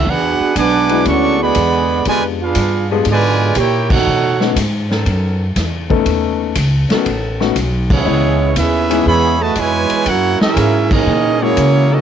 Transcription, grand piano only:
0.90 G#3 B3 D4 E4 F#4
2.06 G#3 B3 D4 F4 G4
2.92 G#3 B3 D4 F4 G4
4.41 A3 B3 C#4 D#4 F#4
5.89 A3 B3 C#4 D#4 A4
6.91 A3 B3 C#4 D#4 F#4
7.40 A3 B3 C#4 D#4 F#4
8.05 G#3 B3 C#4 E4 D#5
8.90 G#3 B3 C#4 D#4 E4
11.42 G#3 A#3 C#4 E4 F#4

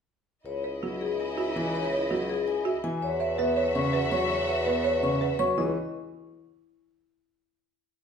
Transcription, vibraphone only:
0.46 C#5
1.01 G#4
1.20 G#5
1.38 E5
1.57 G#5
1.74 C#5
2.30 G#4
2.48 G#5
2.66 E5
2.84 G#5
3.02 C#5
3.21 B4
3.39 E5
3.57 B4
3.75 C#6
3.94 F#5
4.12 C#6
4.30 C#5
4.48 B4
4.66 E5
4.85 B4
5.03 C#6
5.22 F#5
5.39 C#6
5.58 D#5

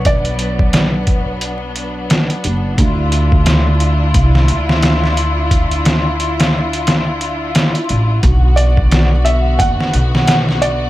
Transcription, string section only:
Already playing: F#3 B3 D4
2.79 E4 F4
8.22 D3 B3 F#4

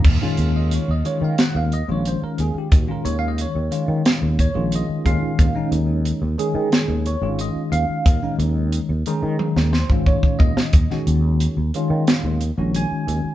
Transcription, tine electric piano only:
0.21 D#3 G#3 C#4 F4
0.56 D#5
0.75 C#5
0.91 D#5
1.04 D#3 G#3 C#4 F4 C#5
1.24 F5
1.40 F#5
1.56 F5
1.73 D#5
1.88 D#3 G#3 C#4 F4 C#5
2.08 C5
2.24 A#4
2.40 G#4
2.58 G4
2.74 F#4
2.87 D#3 G#3 C#4 F4 A#4
3.05 C#5
3.19 F5
3.28 D#5
3.42 C#5
3.71 D#3 G#3 C#4 F4
4.40 C#5
4.54 D#3 G#3 C#4 F4
4.75 D#5
5.05 D#3 G#3 C#4 F4 F5
5.55 D#3 G#3 C#4 D#4
6.38 D#3 G#3 C#4 G#4
7.07 C#5
7.21 D#3 G#3 C#4 F4
7.41 D#5
7.72 F5
8.22 D#3 G#3 C#4 D#4
9.07 D#3 G#3 C#4 D#4
9.73 C5
9.90 D#3 G#3 C#4 F4
10.07 C#5
10.39 D#5
10.90 D#3 G#3 C#4 F#4
11.74 D#3 G#3 C#4 F4
12.58 D#3 G#3 C#4 F#4
12.76 G#5

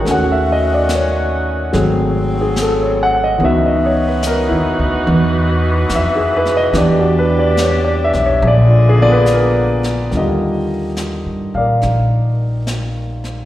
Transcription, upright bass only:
0.05 D#2
1.74 G#1
3.40 C#2
4.51 D#2
4.79 D2
5.07 E2
5.90 F2
6.73 E2
8.14 B1
8.42 A#1
10.13 D#2
11.26 G2
11.54 A#2
11.83 A#1

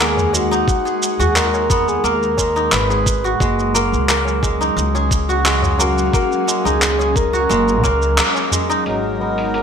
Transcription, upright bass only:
Already playing: D#2
1.20 D#2
2.04 D#2
2.72 G#1
3.40 F#1
3.92 C#2
4.77 C#2
6.65 C#2
7.50 F#1
7.84 C#2
8.86 G#1

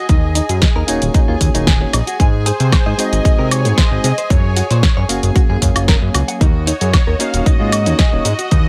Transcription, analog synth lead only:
Already playing: D#5
2.46 C5
2.98 D#5
3.51 C#5
3.77 D#5
4.30 C#5
6.67 C#5
7.20 F5
7.40 F5
7.46 D#5
8.25 D#5

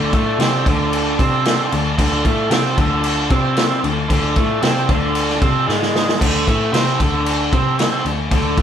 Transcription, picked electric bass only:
Already playing: D2
0.13 A2
0.39 C3
0.67 D2
1.20 C3
1.73 D2
1.98 D2
2.25 A2
2.50 C3
2.78 D2
3.30 C3
3.84 D2
4.10 D2
4.37 A2
4.63 C3
4.89 D2
5.42 C3
5.69 G#2
6.21 D2
6.48 A2
6.73 C3
7.00 D2
7.53 C3
8.05 D2
8.31 D2
8.58 A2

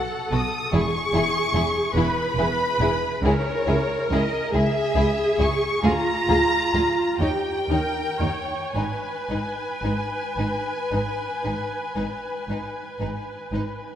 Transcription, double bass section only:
0.31 B1
0.73 E1
1.14 E1
1.53 E1
1.95 E1
2.36 E1
2.80 E1
3.23 C#2
3.67 C#2
4.10 C#2
4.53 C#2
4.96 C#2
5.38 C#2
5.82 D2
6.28 D2
6.74 D2
7.21 D#2
7.70 D#2
8.21 D#2
8.75 G#1
9.30 G#1
9.83 G#1
10.38 G#1
10.92 G#1
11.45 G#1
11.97 G#1
12.48 G#1
13.01 G#1
13.52 G#1

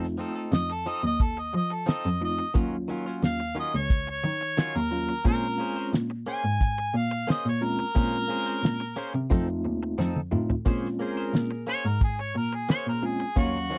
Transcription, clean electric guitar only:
0.18 F3 C4 D#4 A4
0.35 C4 D#4 A4
0.70 muted clean electric guitar stroke
0.86 F3 C4 D#4 A4
1.03 muted clean electric guitar stroke
1.37 muted clean electric guitar stroke
1.53 muted clean electric guitar stroke
1.70 muted clean electric guitar stroke
1.86 F3 C4 D#4 A4
2.21 muted clean electric guitar stroke
2.38 muted clean electric guitar stroke
2.54 D#3 F#3 C#4 F4
2.88 D#3 F#3 C#4 F4
3.06 F#3 C#4 F4
3.23 muted clean electric guitar stroke
3.40 muted clean electric guitar stroke
3.55 D#3 F#3 C#4 F4
3.74 muted clean electric guitar stroke
4.07 muted clean electric guitar stroke
4.23 muted clean electric guitar stroke
4.41 muted clean electric guitar stroke
4.57 D#3 F#3 C#4 F4
4.92 muted clean electric guitar stroke
5.09 muted clean electric guitar stroke
5.25 A#3 C#4 G#4 C5
5.58 A#3 C#4 G#4 C5
5.76 C#4 G#4 C5
5.92 muted clean electric guitar stroke
6.10 muted clean electric guitar stroke
6.26 A#3 C#4 G#4 C5
6.45 muted clean electric guitar stroke
6.78 muted clean electric guitar stroke
6.94 muted clean electric guitar stroke
7.11 muted clean electric guitar stroke
7.27 A#3 C#4 G#4 C5
7.62 muted clean electric guitar stroke
7.79 muted clean electric guitar stroke
7.95 A#3 C#4 G#4 C5
8.28 A#3 C#4 G#4 C5
8.46 C#4 G#4 C5
8.62 muted clean electric guitar stroke
8.80 muted clean electric guitar stroke
8.96 A#3 C#4 G#4 C5
9.14 muted clean electric guitar stroke
9.30 F3 C4 D#4 A4
9.49 muted clean electric guitar stroke
9.65 muted clean electric guitar stroke
9.83 muted clean electric guitar stroke
9.98 F3 C4 D#4 A4
10.32 muted clean electric guitar stroke
10.50 muted clean electric guitar stroke
10.66 A#3 C#4 G#4 C5
10.99 A#3 C#4 G#4 C5
11.17 C#4 G#4 C5
11.33 muted clean electric guitar stroke
11.51 muted clean electric guitar stroke
11.67 A#3 C#4 G#4 C5
11.85 muted clean electric guitar stroke
12.19 muted clean electric guitar stroke
12.35 muted clean electric guitar stroke
12.53 muted clean electric guitar stroke
12.69 A#3 C#4 G#4 C5
13.02 muted clean electric guitar stroke
13.20 muted clean electric guitar stroke
13.36 D#3 F#3 C#4 F4
13.70 D#3 F#3 C#4 F4

